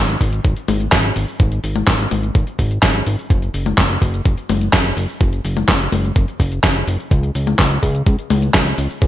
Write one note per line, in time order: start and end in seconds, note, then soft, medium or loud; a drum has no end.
0.00 0.17 G#1 medium
0.09 closed hi-hat soft
0.09 cabasa soft
0.21 0.41 G#1 loud
0.21 kick medium
0.21 open hi-hat loud
0.21 cabasa medium
0.33 closed hi-hat soft
0.33 cabasa soft
0.45 0.55 G#1 medium
0.45 kick loud
0.45 closed hi-hat loud
0.45 cabasa soft
0.57 closed hi-hat soft
0.57 cabasa soft
0.68 0.88 G#1 loud
0.68 open hi-hat loud
0.68 high tom medium
0.68 cabasa medium
0.80 closed hi-hat soft
0.80 cabasa soft
0.92 1.12 G#1 medium
0.92 kick loud
0.92 snare loud
0.92 clap loud
0.92 closed hi-hat medium
0.92 cabasa soft
1.04 closed hi-hat soft
1.04 cabasa soft
1.16 1.26 G#1 medium
1.16 open hi-hat loud
1.16 cabasa medium
1.28 cabasa soft
1.40 1.60 G#1 loud
1.40 kick loud
1.40 closed hi-hat medium
1.40 cabasa soft
1.52 closed hi-hat soft
1.52 cabasa soft
1.64 1.84 G#1 medium
1.64 open hi-hat loud
1.64 cabasa medium
1.76 closed hi-hat soft
1.76 high tom medium
1.76 cabasa soft
1.87 2.07 G#1 loud
1.87 kick loud
1.87 snare loud
1.87 clap medium
1.87 closed hi-hat medium
1.87 cabasa soft
1.99 closed hi-hat soft
1.99 cabasa soft
2.11 2.31 G#1 loud
2.11 open hi-hat loud
2.11 high tom medium
2.11 cabasa medium
2.23 closed hi-hat soft
2.23 cabasa soft
2.35 2.45 G#1 medium
2.35 kick loud
2.35 closed hi-hat loud
2.35 cabasa soft
2.47 closed hi-hat soft
2.47 cabasa soft
2.59 2.79 G#1 medium
2.59 kick medium
2.59 open hi-hat loud
2.59 cabasa medium
2.71 closed hi-hat soft
2.71 cabasa soft
2.83 3.02 G#1 medium
2.83 kick loud
2.83 snare loud
2.83 clap loud
2.83 closed hi-hat medium
2.83 cabasa soft
2.95 closed hi-hat soft
2.95 cabasa soft
3.07 3.16 G#1 loud
3.07 open hi-hat loud
3.07 cabasa medium
3.19 cabasa soft
3.30 3.50 F#1 loud
3.30 kick loud
3.30 closed hi-hat medium
3.30 cabasa soft
3.42 closed hi-hat soft
3.42 cabasa soft
3.54 3.74 F#1 medium
3.54 open hi-hat loud
3.54 cabasa medium
3.66 closed hi-hat soft
3.66 high tom medium
3.66 cabasa soft
3.78 3.98 F#1 loud
3.78 kick loud
3.78 snare loud
3.78 clap medium
3.78 closed hi-hat medium
3.78 cabasa soft
3.90 closed hi-hat soft
3.90 cabasa soft
4.02 4.21 F#1 loud
4.02 kick medium
4.02 open hi-hat medium
4.02 cabasa medium
4.14 closed hi-hat soft
4.14 cabasa soft
4.25 4.35 F#1 medium
4.25 kick loud
4.25 closed hi-hat medium
4.25 cabasa soft
4.38 closed hi-hat soft
4.38 cabasa soft
4.49 4.69 F#1 loud
4.49 open hi-hat loud
4.49 high tom medium
4.49 cabasa medium
4.61 closed hi-hat soft
4.61 cabasa soft
4.73 4.93 F#1 medium
4.73 kick loud
4.73 snare loud
4.73 clap loud
4.73 closed hi-hat medium
4.73 cabasa soft
4.85 closed hi-hat soft
4.85 cabasa soft
4.97 5.07 F#1 loud
4.97 open hi-hat loud
4.97 cabasa medium
5.09 cabasa soft
5.21 5.41 F#1 medium
5.21 kick loud
5.21 closed hi-hat medium
5.21 cabasa soft
5.33 closed hi-hat soft
5.33 cabasa soft
5.45 5.64 F#1 medium
5.45 open hi-hat loud
5.45 cabasa medium
5.57 closed hi-hat soft
5.57 high tom medium
5.57 cabasa soft
5.68 5.88 F#1 medium
5.68 kick loud
5.68 snare loud
5.68 clap medium
5.68 closed hi-hat medium
5.68 cabasa soft
5.81 closed hi-hat soft
5.81 cabasa soft
5.92 6.12 F#1 loud
5.92 open hi-hat loud
5.92 high tom medium
5.92 cabasa medium
6.04 closed hi-hat soft
6.04 cabasa soft
6.16 6.26 F#1 medium
6.16 kick loud
6.16 closed hi-hat medium
6.16 cabasa soft
6.28 closed hi-hat soft
6.28 cabasa soft
6.40 6.60 F#1 loud
6.40 kick medium
6.40 open hi-hat loud
6.40 cabasa medium
6.52 closed hi-hat soft
6.52 cabasa soft
6.64 6.83 F#1 medium
6.64 kick loud
6.64 snare loud
6.64 clap medium
6.64 closed hi-hat medium
6.64 cabasa soft
6.76 closed hi-hat soft
6.76 cabasa soft
6.87 6.97 F#1 loud
6.87 open hi-hat loud
6.87 cabasa medium
6.99 cabasa soft
7.11 7.31 C#2 loud
7.11 kick loud
7.11 closed hi-hat medium
7.11 cabasa soft
7.23 closed hi-hat soft
7.23 cabasa soft
7.35 7.55 C#2 medium
7.35 open hi-hat loud
7.35 cabasa medium
7.47 closed hi-hat soft
7.47 high tom medium
7.47 cabasa soft
7.59 7.79 C#2 loud
7.59 kick loud
7.59 snare loud
7.59 clap medium
7.59 closed hi-hat medium
7.59 cabasa soft
7.71 closed hi-hat soft
7.71 cabasa soft
7.83 8.03 C#2 loud
7.83 kick medium
7.83 open hi-hat loud
7.83 cabasa medium
7.95 closed hi-hat soft
7.95 cabasa soft
8.07 8.16 C#2 medium
8.07 kick loud
8.07 closed hi-hat medium
8.07 cabasa soft
8.19 closed hi-hat soft
8.19 cabasa soft
8.30 8.50 C#2 loud
8.30 open hi-hat loud
8.30 high tom medium
8.30 cabasa medium
8.42 closed hi-hat soft
8.42 cabasa soft
8.54 8.74 C#2 medium
8.54 kick loud
8.54 snare loud
8.54 clap medium
8.54 closed hi-hat medium
8.54 cabasa soft
8.66 closed hi-hat soft
8.66 cabasa soft
8.78 8.88 C#2 medium
8.78 open hi-hat loud
8.78 cabasa medium
8.90 cabasa soft
9.02 9.07 C#2 loud
9.02 kick loud
9.02 closed hi-hat medium
9.02 cabasa soft